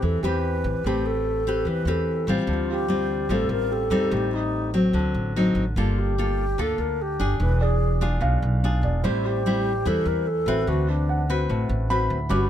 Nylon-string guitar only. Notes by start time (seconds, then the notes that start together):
Already playing: C4 G4 B4
0.02 E3
0.24 C4 G4 B4
0.86 A3 C4 G4 B4
1.47 C4 G4 B4
1.67 E3
1.87 C4 G4 B4
2.28 G3 C4 F4
2.47 D3
2.88 G3 C4 F4
3.30 A2 G3 C4 F4
3.91 G3 C4 D#4
4.12 A2
4.74 F#3 C4
4.94 D3
5.36 F#3 C4 D#4
5.77 G3 A#3 F4 A4
6.18 A#3 F4 A4
6.58 D3 A#3 F4 A4
7.20 D4 G#4
7.40 E3
8.01 D4 F4 G#4
8.21 B2
8.64 D4 F4 G#4
9.04 A2 G3 C4 E4
9.46 G3 C4 E4
9.86 E3 G3 C4 E4
10.48 C4 F#4 B4
10.68 D3
11.29 C4 F#4 B4
11.50 A2
11.90 C4 F#4 B4
12.29 G3 C#4 F#4 B4